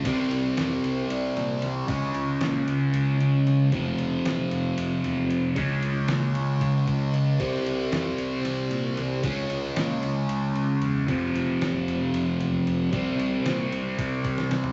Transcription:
<<
  \new Staff \with { instrumentName = "Distorted electric guitar" } { \clef bass \time 7/8 \tempo 4 = 114 <c g c'>2.~ <c g c'>8 | <des aes des'>2.~ <des aes des'>8 | <f, c f>2.~ <f, c f>8 | <des aes des'>2.~ <des aes des'>8 |
<c g c'>2.~ <c g c'>8 | <des aes des'>2.~ <des aes des'>8 | <f, c f>2.~ <f, c f>8 | <c g c'>2.~ <c g c'>8 | }
  \new Staff \with { instrumentName = "Fingered electric bass" } { \clef bass \time 7/8 c,8 c,8 f,8 c,8 c,8 bes,8 c,8 | des,8 des,8 bes,8 des,8 des,8 des,8 des8 | f,,8 f,,8 bes,,8 f,,8 f,,8 e,8 f,,8 | des,8 des,8 bes,8 des,8 des,8 des,8 des8 |
c,8 c,8 f,8 c,8 c,8 bes,8 c,8 | des,8 des,8 bes,8 des,8 des,8 des,8 e,8 | f,,8 f,,8 bes,,8 f,,8 f,,8 e,8 f,,8 | c,8 c,8 bes,8 c,8 c,8 c,8 c8 | }
  \new DrumStaff \with { instrumentName = "Drums" } \drummode { \time 7/8 <cymc bd cymr>8 cymr8 <cymr sn>8 cymr8 cymr8 <cymr sn>8 <cymr sn>8 | <bd cymr>8 cymr8 <cymr sn>8 cymr8 cymr8 cymr8 <cymr sn>8 | <bd cymr>8 cymr8 <cymr sn>8 cymr8 cymr8 cymr8 cymr8 | <bd cymr>8 cymr8 <cymr sn>8 cymr8 <bd cymr>8 <bd cymr>8 cymr8 |
<cymc bd>8 cymr8 <cymr sn>8 cymr8 <cymr sn>8 cymr8 <cymr sn>8 | <bd cymr>8 cymr8 <cymr sn>8 cymr8 cymr8 cymr8 cymr8 | <bd cymr>8 <cymr sn>8 <cymr sn>8 cymr8 cymr8 cymr8 cymr8 | <bd cymr>8 cymr8 <cymr sn>8 cymr8 <bd cymr>8 <bd cymr>16 sn16 <cymr sn>16 tomfh16 | }
>>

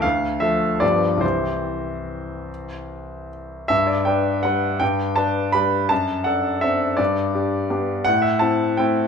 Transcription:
\new Staff \with { instrumentName = "Grand piano" } { \time 3/4 \key c \major \tempo 4 = 162 << { f''4 e''4 d''4 | c''2.~ | c''2 r4 | \key g \major e''8 d''8 g''4 fis''4 |
g''4 a''4 b''4 | a''4 fis''4 e''4 | d''2. | fis''8 e''8 a''4 g''4 | } \\ { d,4 <f a a'>4 <g, f b g'>4 | <c, e c' g'>2.~ | <c, e c' g'>2. | g,4 <d' b'>4 <g d' b'>4 |
g,4 <d' b'>4 <g d' b'>4 | fis,4 <d' a'>4 <c' d' a'>4 | g,4 <d' g'>4 <b d' g'>4 | a,4 <c' e'>4 <a c' e'>4 | } >> }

